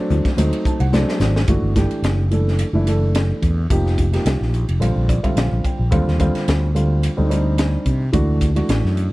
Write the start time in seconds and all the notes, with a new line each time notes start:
Already playing: F#3 A3 C4 D4
0.10 D2, hi-hat pedal, high conga
0.25 kick, snare, ride
0.37 D2 F#3 A3 C4 D#4, hi-hat pedal, ride, muted conga
0.53 ride
0.65 A5, muted fretless electric bass stroke, kick, hi-hat pedal, muted conga
0.80 C2 F#5, ride
0.93 F#3 A3 C4 D4 D5, snare, hi-hat pedal, high conga
1.09 snare
1.20 G#1 C5, snare, hi-hat pedal, high conga
1.36 snare
1.48 G1 E3 A3 D4 F#4, kick, hi-hat pedal, ride
1.62 G1
1.76 E3 A3 D4 G4, kick, snare, hi-hat pedal, ride
1.91 ride
2.02 F#1, snare, hi-hat pedal, ride
2.31 E3 A3 D4 A4, hi-hat pedal, ride
2.48 snare
2.59 hi-hat pedal, ride
2.73 F#1 E3 A3 D4 E4
2.87 E3 A3 D4 A4, hi-hat pedal, ride
3.15 snare, hi-hat pedal, ride
3.42 E2, kick, hi-hat pedal, ride
3.70 F1 F3 A#3 D#4 G4, kick, hi-hat pedal, ride
3.86 snare
3.98 kick, hi-hat pedal, ride
4.12 F3 A#3 D#4 G4, snare, ride
4.25 C2, snare, hi-hat pedal, ride
4.41 A#1, snare
4.54 hi-hat pedal, ride
4.69 F1, ride
4.80 A#1 D3 G3 C4 F4, hi-hat pedal, ride
4.96 A#1
5.09 D5, kick, hi-hat pedal, ride
5.23 D3 G3 C4 F4 E5, kick, ride
5.36 A#1 F5, snare, hi-hat pedal, ride
5.52 A#1
5.64 G5, kick, hi-hat pedal, ride
5.79 A#1
5.91 D#2 D3 G3 C4 F4, kick, hi-hat pedal, ride
6.08 D#2, snare
6.19 D3 G3 C4 F4, kick, hi-hat pedal, ride
6.35 snare, ride
6.48 D2, snare, hi-hat pedal, ride
6.74 D3 G3 C4 F4, hi-hat pedal, ride
7.03 hi-hat pedal, ride
7.17 D2 D3 G3 C4 D#4
7.29 G3 C4 D4 D#4, hi-hat pedal, ride
7.58 snare, hi-hat pedal, ride
7.86 C3, kick, hi-hat pedal, ride
8.12 D2 E3 A3 D4 F#4, kick, hi-hat pedal, ride
8.41 kick, hi-hat pedal, ride
8.55 E3 A3 D4 F#4, ride
8.69 A1, snare, hi-hat pedal, ride
8.84 F#2, snare
8.97 hi-hat pedal, ride